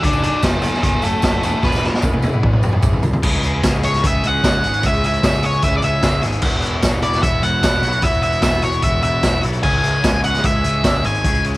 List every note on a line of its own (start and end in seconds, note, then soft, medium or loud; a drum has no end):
0.00 0.27 F#1 loud
0.00 0.61 F#2 medium
0.00 0.62 C#3 medium
0.00 0.62 F#3 loud
0.00 1.40 F#4 medium
0.00 1.42 A4 medium
0.00 0.22 A4 medium
0.00 0.23 F#5 medium
0.00 1.40 G#5 medium
0.00 kick loud
0.00 closed hi-hat medium
0.04 0.62 A3 loud
0.04 0.62 C#4 loud
0.04 0.61 F#4 loud
0.04 1.43 A4 loud
0.13 tambourine medium
0.23 0.42 A4 medium
0.23 0.43 F#5 medium
0.23 closed hi-hat medium
0.33 tambourine soft
0.42 0.67 F#1 medium
0.42 0.61 G#4 medium
0.42 0.62 E5 medium
0.42 kick loud
0.42 snare loud
0.42 closed hi-hat medium
0.42 tambourine loud
0.53 tambourine soft
0.62 1.20 F#2 medium
0.62 1.21 C#3 medium
0.62 1.22 F#3 medium
0.62 1.22 A3 medium
0.62 1.22 C#4 medium
0.62 1.21 F#4 medium
0.62 0.81 G#4 medium
0.62 0.83 E5 medium
0.62 closed hi-hat medium
0.62 tambourine medium
0.74 snare soft
0.83 0.95 F#1 loud
0.83 1.02 G#4 medium
0.83 1.03 E5 medium
0.83 kick loud
0.83 closed hi-hat medium
0.93 tambourine soft
1.02 1.15 F#1 medium
1.02 1.22 E4 medium
1.02 1.23 C#5 medium
1.02 closed hi-hat medium
1.02 tambourine medium
1.12 tambourine soft
1.22 1.42 F#1 medium
1.22 1.41 F#2 medium
1.22 1.42 C#3 medium
1.22 1.42 F#3 medium
1.22 1.42 A3 medium
1.22 1.42 C#4 medium
1.22 1.42 E4 medium
1.22 1.43 F#4 medium
1.22 1.43 C#5 medium
1.22 kick loud
1.22 snare loud
1.22 closed hi-hat medium
1.22 tambourine medium
1.33 tambourine soft
1.41 1.54 E1 medium
1.41 2.01 E2 medium
1.41 2.02 B2 loud
1.41 2.02 E3 loud
1.41 2.02 G#3 loud
1.41 2.03 B3 loud
1.41 3.03 E4 medium
1.41 1.63 E4 medium
1.41 3.22 G#4 medium
1.41 2.03 G#4 loud
1.41 1.63 C#5 medium
1.41 3.21 E5 medium
1.41 3.21 B5 medium
1.41 closed hi-hat medium
1.41 tambourine medium
1.63 1.87 E1 medium
1.63 1.84 B4 loud
1.63 kick loud
1.63 snare medium
1.63 tambourine soft
1.72 snare medium
1.72 tambourine medium
1.84 snare medium
1.94 snare medium
2.02 2.27 E1 medium
2.02 2.62 E2 medium
2.02 2.62 B2 medium
2.02 2.62 E3 medium
2.02 2.63 G#3 medium
2.02 2.62 B3 medium
2.02 2.61 G#4 medium
2.02 kick loud
2.02 high tom medium
2.02 tambourine medium
2.12 high tom medium
2.12 tambourine soft
2.22 high tom medium
2.22 tambourine medium
2.33 mid tom medium
2.33 tambourine soft
2.43 2.55 E1 medium
2.43 kick loud
2.43 mid tom medium
2.53 mid tom medium
2.62 2.74 E1 medium
2.62 3.03 B2 medium
2.62 3.03 E3 medium
2.62 3.03 G#3 medium
2.62 3.02 B3 medium
2.62 3.02 G#4 medium
2.62 mid tom medium
2.62 tambourine medium
2.66 3.03 E2 medium
2.73 mid tom medium
2.82 2.95 E1 medium
2.82 kick loud
2.82 mid tom loud
2.82 tambourine medium
2.93 floor tom medium
2.93 tambourine soft
3.03 3.16 C2 medium
3.03 floor tom loud
3.03 tambourine medium
3.13 floor tom medium
3.13 tambourine soft
3.23 3.61 C#2 medium
3.23 3.42 C#3 medium
3.23 3.43 E3 loud
3.23 3.43 G#3 medium
3.23 3.43 C#4 loud
3.23 3.44 E4 loud
3.23 6.40 G#4 medium
3.23 3.44 G#4 loud
3.23 6.40 E5 medium
3.23 6.40 C#6 medium
3.23 kick loud
3.23 crash loud
3.43 3.62 C#3 medium
3.43 3.63 E3 medium
3.43 3.63 G#3 medium
3.43 3.64 C#4 loud
3.43 3.64 E4 loud
3.43 3.64 G#4 loud
3.43 closed hi-hat medium
3.62 4.01 C#2 medium
3.62 3.82 C#3 medium
3.62 3.83 E3 medium
3.62 3.83 G#3 medium
3.62 3.83 C#4 medium
3.62 3.84 E4 medium
3.62 3.84 G#4 medium
3.62 kick loud
3.62 snare loud
3.62 closed hi-hat loud
3.62 tambourine loud
3.82 4.01 C#3 medium
3.82 4.03 E3 medium
3.82 4.01 G#3 medium
3.82 4.01 C#4 medium
3.82 4.03 E4 medium
3.82 4.03 G#4 medium
3.82 4.05 C#5 medium
3.82 closed hi-hat medium
3.94 snare soft
3.94 closed hi-hat soft
4.02 4.23 C#2 medium
4.02 4.21 C#3 loud
4.02 4.23 E3 medium
4.02 4.22 G#3 loud
4.02 4.22 C#4 loud
4.02 4.23 E4 loud
4.02 4.23 G#4 loud
4.02 kick loud
4.02 closed hi-hat loud
4.07 4.26 E5 medium
4.22 4.43 C#2 medium
4.22 4.41 C#3 medium
4.22 4.43 E3 medium
4.22 4.42 G#3 medium
4.22 4.43 C#4 loud
4.22 4.44 E4 loud
4.22 4.43 G#4 loud
4.22 closed hi-hat medium
4.27 4.87 F#5 loud
4.43 4.62 C#2 loud
4.43 4.61 C#3 medium
4.43 4.63 E3 medium
4.43 4.62 G#3 medium
4.43 4.63 C#4 medium
4.43 4.64 E4 medium
4.43 4.64 G#4 medium
4.43 kick loud
4.43 snare loud
4.43 closed hi-hat loud
4.43 tambourine medium
4.62 4.83 G#1 medium
4.62 4.82 C#3 medium
4.62 4.83 E3 medium
4.62 4.83 G#3 medium
4.62 4.83 C#4 medium
4.62 4.84 E4 medium
4.62 4.84 G#4 loud
4.62 closed hi-hat medium
4.74 closed hi-hat soft
4.83 5.21 C#2 loud
4.83 5.02 C#3 medium
4.83 5.03 E3 medium
4.83 5.03 G#3 loud
4.83 5.03 C#4 medium
4.83 5.04 E4 loud
4.83 5.04 G#4 loud
4.83 5.05 E5 loud
4.83 kick loud
4.83 closed hi-hat medium
4.94 closed hi-hat soft
5.03 5.22 C#3 medium
5.03 5.22 E3 medium
5.03 5.23 G#3 medium
5.03 5.24 C#4 medium
5.03 5.25 E4 medium
5.03 5.24 G#4 loud
5.03 5.25 E5 medium
5.03 closed hi-hat medium
5.13 closed hi-hat soft
5.23 5.61 C#2 medium
5.23 5.42 C#3 medium
5.23 5.42 E3 medium
5.23 5.42 G#3 medium
5.23 5.43 C#4 medium
5.23 5.45 E4 medium
5.23 5.44 G#4 medium
5.23 5.43 E5 loud
5.23 kick loud
5.23 snare loud
5.23 closed hi-hat medium
5.23 tambourine medium
5.33 closed hi-hat soft
5.42 5.61 C#3 medium
5.42 5.62 E3 medium
5.42 5.62 G#3 medium
5.42 5.63 C#4 medium
5.42 5.64 E4 medium
5.42 5.63 G#4 medium
5.42 5.63 C#5 medium
5.42 closed hi-hat medium
5.53 closed hi-hat soft
5.62 5.82 C#2 loud
5.62 5.81 C#3 medium
5.62 5.81 E3 medium
5.62 5.82 G#3 loud
5.62 5.82 C#4 loud
5.62 5.84 E4 medium
5.62 5.83 G#4 loud
5.62 5.77 E5 medium
5.62 kick loud
5.62 closed hi-hat medium
5.77 5.84 D5 medium
5.82 6.02 C#2 medium
5.82 6.00 C#3 medium
5.82 6.02 E3 medium
5.82 6.01 G#3 medium
5.82 6.02 C#4 loud
5.82 6.03 E4 loud
5.82 6.03 G#4 loud
5.82 6.21 E5 loud
5.82 closed hi-hat medium
6.02 6.22 C#2 medium
6.02 6.20 C#3 medium
6.02 6.22 E3 medium
6.02 6.21 G#3 medium
6.02 6.21 C#4 medium
6.02 6.23 E4 medium
6.02 6.22 G#4 medium
6.02 kick loud
6.02 snare loud
6.02 closed hi-hat loud
6.02 tambourine loud
6.21 6.42 G#1 medium
6.21 6.41 C#3 medium
6.21 6.41 E3 medium
6.21 6.41 G#3 medium
6.21 6.42 C#4 medium
6.21 6.43 E4 loud
6.21 6.42 G#4 medium
6.21 snare soft
6.21 closed hi-hat medium
6.32 closed hi-hat medium
6.41 6.80 E1 loud
6.41 6.62 E2 medium
6.41 6.62 E3 loud
6.41 6.63 F#3 loud
6.41 6.63 B3 loud
6.41 6.64 E4 loud
6.41 6.64 F#4 loud
6.41 9.60 F#4 medium
6.41 11.57 E5 medium
6.41 9.60 B5 medium
6.41 kick loud
6.41 crash loud
6.62 6.81 E2 medium
6.62 6.82 E3 loud
6.62 6.83 F#3 medium
6.62 6.83 B3 loud
6.62 6.84 E4 loud
6.62 6.84 F#4 loud
6.62 closed hi-hat medium
6.82 7.20 E1 medium
6.82 7.02 E2 medium
6.82 7.03 E3 medium
6.82 7.03 F#3 medium
6.82 7.04 B3 medium
6.82 7.04 E4 loud
6.82 7.04 F#4 medium
6.82 kick loud
6.82 snare loud
6.82 closed hi-hat loud
6.82 tambourine loud
7.02 7.21 E2 medium
7.02 7.22 E3 medium
7.02 7.22 F#3 medium
7.02 7.23 B3 medium
7.02 7.24 E4 medium
7.02 7.23 F#4 loud
7.02 7.22 D5 medium
7.02 closed hi-hat medium
7.13 snare soft
7.13 closed hi-hat medium
7.22 7.42 E1 medium
7.22 7.41 E2 medium
7.22 7.43 E3 loud
7.22 7.42 F#3 medium
7.22 7.43 B3 loud
7.22 7.44 E4 loud
7.22 7.43 F#4 loud
7.22 7.44 E5 medium
7.22 kick loud
7.22 closed hi-hat loud
7.42 7.61 E1 medium
7.42 7.62 E2 medium
7.42 7.63 E3 medium
7.42 7.63 F#3 medium
7.42 7.63 B3 medium
7.42 7.65 E4 loud
7.42 7.64 F#4 medium
7.42 8.05 F#5 loud
7.42 closed hi-hat medium
7.63 7.82 E1 medium
7.63 7.81 E2 medium
7.63 7.83 E3 medium
7.63 7.82 F#3 medium
7.63 7.83 B3 medium
7.63 7.85 E4 medium
7.63 7.83 F#4 medium
7.63 kick loud
7.63 snare loud
7.63 closed hi-hat loud
7.63 tambourine loud
7.82 8.02 B1 medium
7.82 8.01 E2 medium
7.82 8.03 E3 medium
7.82 8.02 F#3 medium
7.82 8.03 B3 medium
7.82 8.05 E4 loud
7.82 8.04 F#4 medium
7.82 snare soft
7.82 closed hi-hat medium
7.92 closed hi-hat medium
8.02 8.40 E1 medium
8.02 8.21 E2 loud
8.02 8.23 E3 loud
8.02 8.22 F#3 loud
8.02 8.23 B3 loud
8.02 8.24 E4 loud
8.02 8.24 F#4 loud
8.02 8.22 E5 loud
8.02 kick loud
8.02 closed hi-hat loud
8.13 closed hi-hat soft
8.22 8.41 E2 medium
8.22 8.42 E3 medium
8.22 8.42 F#3 loud
8.22 8.43 B3 medium
8.22 8.44 E4 loud
8.22 8.43 F#4 medium
8.22 8.42 E5 medium
8.22 closed hi-hat medium
8.32 closed hi-hat soft
8.42 8.81 E1 loud
8.42 8.61 E2 medium
8.42 8.63 E3 medium
8.42 8.62 F#3 medium
8.42 8.63 B3 medium
8.42 8.65 E4 medium
8.42 8.63 F#4 medium
8.42 8.63 E5 medium
8.42 kick loud
8.42 snare loud
8.42 closed hi-hat medium
8.42 tambourine loud
8.52 closed hi-hat soft
8.62 8.82 E2 medium
8.62 8.83 E3 medium
8.62 8.82 F#3 medium
8.62 8.83 B3 medium
8.62 8.84 E4 loud
8.62 8.84 F#4 medium
8.62 8.83 C#5 medium
8.62 closed hi-hat medium
8.72 closed hi-hat soft
8.82 9.02 E1 medium
8.82 9.02 E2 loud
8.82 9.03 E3 medium
8.82 9.03 F#3 medium
8.82 9.03 B3 medium
8.82 9.05 E4 loud
8.82 9.04 F#4 loud
8.82 9.02 E5 medium
8.82 kick loud
8.82 closed hi-hat medium
9.02 9.22 E1 medium
9.02 9.22 E2 medium
9.02 9.23 E3 medium
9.02 9.23 F#3 medium
9.02 9.23 B3 loud
9.02 9.25 E4 medium
9.02 9.24 F#4 medium
9.02 9.41 E5 loud
9.02 closed hi-hat medium
9.23 9.42 E1 loud
9.23 9.42 E2 medium
9.23 9.43 E3 medium
9.23 9.43 F#3 medium
9.23 9.43 B3 medium
9.23 9.45 E4 medium
9.23 9.44 F#4 medium
9.23 kick loud
9.23 snare loud
9.23 closed hi-hat loud
9.23 tambourine loud
9.43 9.64 B1 medium
9.43 9.62 E2 medium
9.43 9.63 E3 medium
9.43 9.62 F#3 loud
9.43 9.63 B3 medium
9.43 9.64 E4 loud
9.43 9.63 F#4 medium
9.43 closed hi-hat medium
9.53 closed hi-hat soft
9.63 10.01 C#2 medium
9.63 9.83 C#3 loud
9.63 9.83 E3 loud
9.63 9.83 G#3 medium
9.63 9.84 C#4 loud
9.63 9.85 E4 loud
9.63 11.57 G#4 medium
9.63 9.85 G#4 loud
9.63 10.19 G#5 loud
9.63 11.57 C#6 medium
9.63 kick loud
9.63 crash medium
9.83 10.03 C#3 medium
9.83 10.03 E3 medium
9.83 10.03 G#3 medium
9.83 10.04 C#4 loud
9.83 10.04 E4 medium
9.83 10.05 G#4 loud
9.83 closed hi-hat medium
10.03 10.41 C#2 medium
10.03 10.23 C#3 medium
10.03 10.23 E3 medium
10.03 10.23 G#3 medium
10.03 10.24 C#4 medium
10.03 10.25 E4 loud
10.03 10.25 G#4 medium
10.03 kick loud
10.03 snare loud
10.03 closed hi-hat loud
10.03 tambourine loud
10.23 10.42 C#3 medium
10.23 10.43 E3 medium
10.23 10.43 G#3 medium
10.23 10.43 C#4 loud
10.23 10.44 E4 medium
10.23 10.44 G#4 medium
10.23 10.43 F#5 medium
10.23 closed hi-hat medium
10.34 snare soft
10.34 closed hi-hat soft
10.43 10.63 C#2 loud
10.43 10.63 C#3 medium
10.43 10.64 E3 medium
10.43 10.63 G#3 loud
10.43 10.64 C#4 loud
10.43 10.65 E4 loud
10.43 10.65 G#4 loud
10.43 11.07 E5 medium
10.43 kick loud
10.43 closed hi-hat loud
10.64 10.83 C#2 medium
10.64 10.83 C#3 medium
10.64 10.84 E3 medium
10.64 10.84 G#3 medium
10.64 10.84 C#4 medium
10.64 10.85 E4 loud
10.64 10.85 G#4 loud
10.64 closed hi-hat medium
10.84 11.03 C#2 medium
10.84 11.03 C#3 medium
10.84 11.05 E3 medium
10.84 11.04 G#3 medium
10.84 11.04 C#4 medium
10.84 11.05 E4 medium
10.84 11.05 G#4 medium
10.84 kick loud
10.84 snare loud
10.84 closed hi-hat loud
10.84 tambourine loud
11.04 11.23 G#1 medium
11.04 11.23 C#3 medium
11.04 11.24 E3 medium
11.04 11.24 G#3 medium
11.04 11.24 C#4 loud
11.04 11.26 E4 medium
11.04 11.25 G#4 medium
11.04 11.42 G#5 loud
11.04 closed hi-hat medium
11.14 closed hi-hat medium
11.24 11.57 C#2 medium
11.24 11.42 C#3 loud
11.24 11.45 E3 medium
11.24 11.43 G#3 loud
11.24 11.44 C#4 loud
11.24 11.45 E4 loud
11.24 11.44 G#4 loud
11.24 kick loud
11.24 closed hi-hat loud
11.35 closed hi-hat soft
11.44 11.57 C#3 medium
11.44 11.57 E3 medium
11.44 11.57 G#3 medium
11.44 11.57 C#4 loud
11.44 11.57 E4 medium
11.44 11.57 G#4 loud
11.44 closed hi-hat medium
11.54 closed hi-hat soft